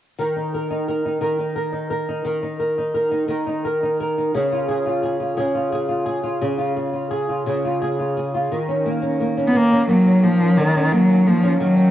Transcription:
0.19 1.20 D#3 soft
0.19 0.53 A#4 soft
0.36 0.69 D#4 soft
0.54 0.87 A#4 soft
0.71 1.04 D#4 soft
0.88 1.20 A#4 soft
1.05 1.37 D#4 soft
1.21 2.23 D#3 soft
1.21 1.54 A#4 soft
1.39 1.71 D#4 soft
1.56 1.89 A#4 soft
1.72 2.07 D#4 soft
1.90 2.25 A#4 soft
2.09 2.41 D#4 soft
2.25 3.27 D#3 medium
2.25 2.58 A#4 soft
2.42 2.77 D#4 soft
2.60 2.93 A#4 soft
2.78 3.10 D#4 soft
2.94 3.27 A#4 soft
3.11 3.45 D#4 soft
3.28 4.33 D#3 soft
3.28 3.64 A#4 soft
3.47 3.82 D#4 soft
3.65 3.99 A#4 soft
3.83 4.17 D#4 soft
4.00 4.35 A#4 soft
4.18 4.42 D#4 soft
4.35 5.36 C#3 medium
4.35 4.67 G#4 soft
4.52 4.85 F4 soft
4.68 5.02 G#4 soft
4.86 5.19 F4 soft
5.03 5.36 G#4 soft
5.20 5.54 F4 soft
5.37 6.40 C#3 medium
5.37 5.71 G#4 soft
5.55 5.87 F4 soft
5.72 6.05 G#4 soft
5.89 6.22 F4 soft
6.06 6.41 G#4 soft
6.23 6.57 F4 soft
6.42 7.45 C#3 medium
6.42 6.75 G#4 soft
6.58 6.92 F4 soft
6.77 7.09 G#4 soft
6.93 7.28 F4 soft
7.11 7.45 G#4 soft
7.29 7.63 F4 soft
7.46 8.51 C#3 medium
7.46 7.80 G#4 soft
7.65 7.98 F4 soft
7.82 8.15 G#4 soft
7.99 8.33 F4 soft
8.17 8.57 G#4 soft
8.34 8.57 F4 soft
8.52 9.53 D#3 medium
8.68 9.01 C#4 soft
8.86 9.19 A#3 soft
9.02 9.37 C#4 soft
9.20 9.87 A#3 soft
9.37 9.71 C#4 soft
9.47 9.58 B3 medium
9.54 10.57 D#3 medium
9.54 9.88 A#3 medium
9.71 10.05 C#4 soft
9.89 10.25 F#3 medium
9.89 10.22 A#3 soft
10.05 10.40 C#4 soft
10.23 10.59 F3 medium
10.23 10.91 A#3 soft
10.40 10.75 C#4 soft
10.57 10.94 D#3 medium
10.57 11.59 D#3 medium
10.75 11.08 C#4 soft
10.92 11.29 F#3 medium
10.92 11.26 A#3 soft
11.08 11.43 C#4 soft
11.27 11.60 F3 medium
11.27 11.91 A#3 soft
11.43 11.76 C#4 soft
11.60 11.91 D#3 medium
11.60 11.91 F#3 medium
11.76 11.91 C#4 soft

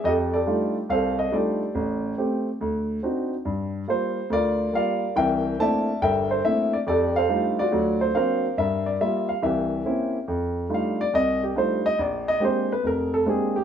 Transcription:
0.04 0.41 F2 medium
0.04 0.34 G4 medium
0.04 0.33 A4 medium
0.04 0.11 D#5 medium
0.34 1.15 G4 medium
0.34 0.91 A4 medium
0.34 0.73 D5 medium
0.46 0.77 G3 soft
0.46 0.77 A3 soft
0.46 0.77 D4 soft
0.46 0.77 D#4 soft
0.46 0.77 F4 medium
0.89 1.27 C2 medium
0.89 1.34 A4 medium
0.89 1.72 C5 medium
0.89 1.19 F5 medium
1.19 1.33 D#5 medium
1.31 1.62 G3 medium
1.31 1.62 A3 soft
1.31 1.62 D4 soft
1.31 1.62 D#4 soft
1.31 1.62 F4 medium
1.31 2.15 G4 soft
1.31 2.15 A4 soft
1.31 2.14 D5 medium
1.75 2.12 A1 medium
2.18 2.48 A3 soft
2.18 2.48 C4 soft
2.18 2.48 G4 medium
2.61 2.98 D2 medium
3.03 3.33 C4 soft
3.03 3.33 D4 soft
3.03 3.33 D#4 soft
3.03 3.33 F#4 medium
3.45 3.82 G2 medium
3.88 4.18 G3 medium
3.88 4.18 A#3 soft
3.88 4.18 F4 medium
3.88 4.29 C5 medium
4.30 4.67 D2 medium
4.30 4.72 F4 medium
4.30 4.74 A#4 medium
4.30 4.75 D5 medium
4.73 5.03 G3 soft
4.73 5.03 A#3 soft
4.73 5.04 F4 medium
4.73 5.14 A#4 medium
4.73 5.15 D5 medium
4.73 5.14 F5 medium
5.16 5.53 C2 medium
5.16 5.53 E3 medium
5.16 5.99 A#4 medium
5.16 5.60 E5 medium
5.16 5.60 G5 medium
5.59 5.89 A3 medium
5.59 5.89 A#3 soft
5.59 5.89 C4 soft
5.59 5.89 D4 soft
5.59 5.89 E4 medium
5.59 6.42 D5 medium
5.59 6.02 E5 medium
5.59 6.03 A5 loud
6.02 6.39 G1 medium
6.02 6.39 G2 medium
6.02 6.84 A#4 medium
6.02 6.43 E5 medium
6.02 6.28 G5 medium
6.31 6.45 C5 medium
6.44 6.74 A3 medium
6.44 6.74 A#3 soft
6.44 6.74 C4 soft
6.44 6.75 D4 soft
6.44 6.75 E4 medium
6.44 6.74 E5 medium
6.73 6.78 D5 medium
6.87 7.24 F2 medium
6.87 7.69 G4 medium
6.87 7.16 A4 medium
6.87 7.17 D5 medium
7.16 7.70 A4 medium
7.16 7.70 C5 medium
7.16 7.56 F5 medium
7.29 7.59 G3 medium
7.29 7.59 A3 soft
7.29 7.59 D4 soft
7.29 7.59 D#4 soft
7.29 7.59 F4 medium
7.59 8.41 F4 medium
7.59 8.41 F#4 medium
7.59 8.03 D5 medium
7.72 8.09 D2 medium
7.72 8.09 F#3 medium
8.01 8.14 C5 medium
8.15 8.45 F#3 soft
8.15 8.45 A#3 soft
8.15 8.45 C4 soft
8.15 8.45 D4 medium
8.15 8.56 A#4 medium
8.15 8.56 C5 medium
8.15 8.59 F5 medium
8.58 8.95 G2 medium
8.58 9.40 A#4 medium
8.58 8.87 E5 medium
8.86 8.99 D5 medium
9.01 9.31 G3 medium
9.01 9.30 A#3 soft
9.01 9.31 F4 medium
9.01 9.27 E5 medium
9.29 9.43 F5 medium
9.43 9.80 C2 medium
9.43 9.80 E3 medium
9.43 10.26 G4 medium
9.43 10.26 A#4 soft
9.43 10.10 E5 medium
9.86 10.16 A#3 medium
9.86 10.16 C4 soft
9.86 10.16 C#4 soft
9.86 10.16 E4 medium
10.28 10.65 F2 medium
10.69 11.00 G3 medium
10.69 11.00 A3 soft
10.69 11.00 D4 soft
10.69 11.01 D#4 soft
10.69 11.01 F4 medium
10.74 11.00 F5 medium
11.01 11.14 D5 medium
11.13 11.51 C2 medium
11.13 11.42 D#5 medium
11.43 11.57 G4 medium
11.55 11.86 G3 soft
11.55 11.86 A3 soft
11.55 11.86 D4 soft
11.55 11.86 D#4 soft
11.55 11.87 F4 medium
11.55 11.85 C5 medium
11.86 11.99 D#5 medium
11.99 12.36 A#1 medium
11.99 12.28 D5 medium
12.28 12.42 D#5 medium
12.40 12.71 G#3 soft
12.40 12.71 A#3 soft
12.40 12.71 C4 soft
12.40 12.71 D4 soft
12.40 12.71 G4 medium
12.45 12.71 C5 medium
12.72 12.85 B4 medium
12.84 13.21 F1 medium
12.84 13.13 A#4 medium
13.14 13.27 A4 medium
13.26 13.56 G#3 medium
13.26 13.56 A#3 soft
13.26 13.57 C4 soft
13.26 13.57 D4 soft
13.26 13.55 G4 medium
13.26 13.56 G#4 medium
13.56 13.64 G4 medium

